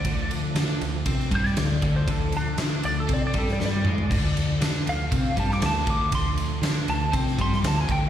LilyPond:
<<
  \new Staff \with { instrumentName = "Lead electric guitar" } { \time 4/4 \key d \minor \tempo 4 = 119 d''8 r2 c''16 d''4 c''16 | a'8 d'8 r8 d''16 a'16 d''16 d''16 a'16 d''16 d''4~ | d''4 r8 f''4 a''16 d'''16 a''8 d'''8 | c'''4. a''8 r8 c'''8 a''16 gis''16 g''16 r16 | }
  \new Staff \with { instrumentName = "Tonewheel organ" } { \time 4/4 \key d \minor <f a d'>1~ | <f a d'>1 | <f a d'>1~ | <f a d'>1 | }
  \new Staff \with { instrumentName = "Overdriven electric guitar" } { \clef bass \time 4/4 \key d \minor d4 d'8 d8 c'8 g8 d8 d8 | d4 d'8 d8 c'8 g8 g8 gis8 | d4 d'8 d8 c'8 g8 d8 d8 | d4 d'8 d8 c'8 g8 d8 d8 | }
  \new Staff \with { instrumentName = "Picked electric bass" } { \clef bass \time 4/4 \key d \minor d,4 d8 d,8 c8 g,8 d,8 d,8 | d,4 d8 d,8 c8 g,8 g,8 gis,8 | d,4 d8 d,8 c8 g,8 d,8 d,8 | d,4 d8 d,8 c8 g,8 d,8 d,8 | }
  \new DrumStaff \with { instrumentName = "Drums" } \drummode { \time 4/4 <bd cymr>8 cymr8 <cymr sn>8 cymr8 <bd cymr>16 sn16 <bd cymr>16 sn16 <cymr sn>8 <bd cymr>8 | <bd cymr>8 cymr8 <cymr sn>8 cymr8 <bd cymr>8 <bd cymr>16 sn16 sn8 toml16 tomfh16 | <cymc bd>8 cymr8 <cymr sn>8 cymr8 <bd cymr>8 <bd cymr>16 sn16 <cymr sn>8 <bd cymr>8 | <bd cymr>8 cymr8 <cymr sn>8 cymr8 <bd cymr>16 sn16 <bd cymr>16 sn16 <cymr sn>8 <bd cymr>8 | }
>>